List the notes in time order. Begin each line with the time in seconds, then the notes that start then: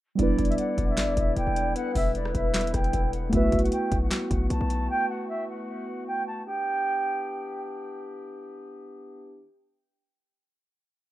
0.15 E1 D3 G3 B3 D4 E4 D5, kick, closed hi-hat
0.21 E4 B4
0.38 E1, kick, closed hi-hat
0.45 E5, closed hi-hat
0.52 closed hi-hat
0.58 F#5, closed hi-hat
0.78 E1, kick, closed hi-hat
0.88 E5
0.97 G1, snare, clap, closed hi-hat
1.08 E1
1.17 E1 E5, kick, closed hi-hat
1.36 D1 G5, closed hi-hat
1.47 E1
1.56 closed hi-hat
1.76 B4 F#5, closed hi-hat
1.95 E1 E5, kick, open hi-hat
2.15 D5, closed hi-hat
2.25 cross-stick
2.35 E1 E5, kick, closed hi-hat
2.54 snare, clap, closed hi-hat
2.61 closed hi-hat
2.67 closed hi-hat
2.74 E1 G5, kick, cross-stick, closed hi-hat
2.84 closed hi-hat
2.93 E1, kick, closed hi-hat
3.13 F#5, closed hi-hat
3.29 B1 E3 A3 B3 E4 F#4 E5, kick, closed hi-hat
3.35 F#4 B4
3.52 B1, kick, closed hi-hat
3.59 F#5, closed hi-hat
3.65 closed hi-hat
3.72 G5, closed hi-hat
3.92 B1, kick, closed hi-hat
4.02 F#5
4.11 snare, clap, closed hi-hat
4.31 B1 F#5, kick, closed hi-hat
4.50 B1 A5, closed hi-hat
4.61 B1
4.70 closed hi-hat
4.90 G5
5.09 F#5
5.29 E5
5.48 F#5
6.07 G5
6.27 A5
6.46 E3 B3 D4 G4 G5